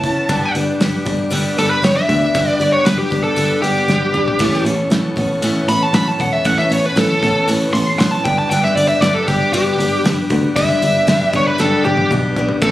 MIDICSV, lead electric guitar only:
0, 0, Header, 1, 2, 480
1, 0, Start_track
1, 0, Tempo, 513699
1, 273, Time_signature, 4, 2, 24, 8
1, 11881, End_track
2, 0, Start_track
2, 0, Title_t, "Lead electric guitar"
2, 0, Program_c, 0, 29
2, 0, Note_on_c, 0, 81, 96
2, 487, Note_off_c, 0, 81, 0
2, 1483, Note_on_c, 0, 69, 91
2, 1587, Note_off_c, 0, 69, 0
2, 1591, Note_on_c, 0, 71, 82
2, 1707, Note_off_c, 0, 71, 0
2, 1718, Note_on_c, 0, 73, 84
2, 1831, Note_off_c, 0, 73, 0
2, 1836, Note_on_c, 0, 76, 96
2, 2322, Note_off_c, 0, 76, 0
2, 2322, Note_on_c, 0, 74, 96
2, 2532, Note_off_c, 0, 74, 0
2, 2548, Note_on_c, 0, 73, 73
2, 2664, Note_on_c, 0, 71, 85
2, 2665, Note_off_c, 0, 73, 0
2, 2783, Note_off_c, 0, 71, 0
2, 2793, Note_on_c, 0, 67, 80
2, 3021, Note_off_c, 0, 67, 0
2, 3024, Note_on_c, 0, 69, 68
2, 3376, Note_off_c, 0, 69, 0
2, 3382, Note_on_c, 0, 67, 89
2, 4316, Note_off_c, 0, 67, 0
2, 5314, Note_on_c, 0, 83, 83
2, 5445, Note_off_c, 0, 83, 0
2, 5445, Note_on_c, 0, 81, 83
2, 5553, Note_off_c, 0, 81, 0
2, 5557, Note_on_c, 0, 83, 84
2, 5679, Note_off_c, 0, 83, 0
2, 5679, Note_on_c, 0, 81, 91
2, 5790, Note_off_c, 0, 81, 0
2, 5802, Note_on_c, 0, 78, 87
2, 5911, Note_off_c, 0, 78, 0
2, 5911, Note_on_c, 0, 76, 73
2, 6037, Note_off_c, 0, 76, 0
2, 6037, Note_on_c, 0, 78, 78
2, 6149, Note_off_c, 0, 78, 0
2, 6152, Note_on_c, 0, 76, 72
2, 6281, Note_off_c, 0, 76, 0
2, 6281, Note_on_c, 0, 73, 75
2, 6407, Note_off_c, 0, 73, 0
2, 6407, Note_on_c, 0, 71, 83
2, 6526, Note_off_c, 0, 71, 0
2, 6526, Note_on_c, 0, 69, 87
2, 6983, Note_off_c, 0, 69, 0
2, 7225, Note_on_c, 0, 84, 112
2, 7343, Note_off_c, 0, 84, 0
2, 7469, Note_on_c, 0, 84, 85
2, 7578, Note_off_c, 0, 84, 0
2, 7578, Note_on_c, 0, 81, 94
2, 7702, Note_off_c, 0, 81, 0
2, 7702, Note_on_c, 0, 79, 85
2, 7822, Note_off_c, 0, 79, 0
2, 7834, Note_on_c, 0, 81, 78
2, 7940, Note_off_c, 0, 81, 0
2, 7944, Note_on_c, 0, 79, 92
2, 8063, Note_off_c, 0, 79, 0
2, 8070, Note_on_c, 0, 76, 80
2, 8179, Note_off_c, 0, 76, 0
2, 8179, Note_on_c, 0, 74, 83
2, 8296, Note_off_c, 0, 74, 0
2, 8299, Note_on_c, 0, 76, 75
2, 8417, Note_on_c, 0, 74, 92
2, 8421, Note_off_c, 0, 76, 0
2, 8539, Note_off_c, 0, 74, 0
2, 8540, Note_on_c, 0, 69, 81
2, 8661, Note_off_c, 0, 69, 0
2, 8671, Note_on_c, 0, 67, 82
2, 8900, Note_off_c, 0, 67, 0
2, 8911, Note_on_c, 0, 67, 86
2, 9376, Note_off_c, 0, 67, 0
2, 9870, Note_on_c, 0, 76, 108
2, 10570, Note_off_c, 0, 76, 0
2, 10615, Note_on_c, 0, 73, 72
2, 10718, Note_off_c, 0, 73, 0
2, 10721, Note_on_c, 0, 71, 74
2, 10833, Note_off_c, 0, 71, 0
2, 10839, Note_on_c, 0, 69, 86
2, 11067, Note_off_c, 0, 69, 0
2, 11070, Note_on_c, 0, 67, 102
2, 11305, Note_off_c, 0, 67, 0
2, 11796, Note_on_c, 0, 69, 86
2, 11881, Note_off_c, 0, 69, 0
2, 11881, End_track
0, 0, End_of_file